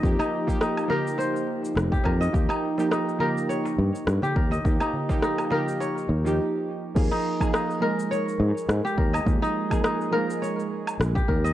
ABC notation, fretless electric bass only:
X:1
M:4/4
L:1/8
Q:"Swing 16ths" 1/4=104
K:Ebmix
V:1 name="Fretless electric bass" clef=bass
F,, z4 z F,,, F,, | E,, z4 G,, G,, E,, | E,, z4 E,, z2 | E,, z4 A,, A,, E,, |
E,, z4 z B,,, E,, |]